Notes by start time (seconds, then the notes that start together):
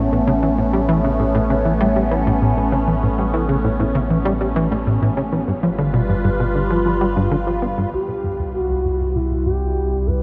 Already playing: A1 A3 B3 C#4
0.12 A2
0.27 C#3
0.43 E3
0.58 A2
0.73 G3
0.89 E3
1.04 C#3
1.19 A2
1.35 A2
1.50 C#3
1.65 E3
1.81 G3
1.96 G3
2.11 E3
2.27 A2
2.42 A2
2.57 A2
2.72 C#3
2.87 E3
3.03 A2
3.18 G3
3.34 E3
3.49 C#3
3.64 A2
3.80 A2
3.95 C#3
4.10 E3
4.25 G3
4.41 G3
4.56 E3
4.71 A2
4.87 A2
5.02 A2
5.17 C#3
5.32 E3
5.48 G1 G2 G3 F4 B4
5.63 F3
5.78 D3
5.94 B2
6.09 G2
6.24 G2
6.40 B2
6.55 D3
6.70 F3
6.86 F3
7.01 G3
7.16 G2
7.31 D3
7.47 F3
7.62 B3
7.78 G2
7.93 C2 C3 G3 E4 G4
8.08 B2
8.24 G2
8.39 E2
8.54 C2 F#4
8.70 C2
8.85 F#2
9.00 G2
9.15 B2 E4
9.31 B2
9.45 G2 G4
9.61 C2
9.77 C2
9.92 C2
10.07 F#2 B4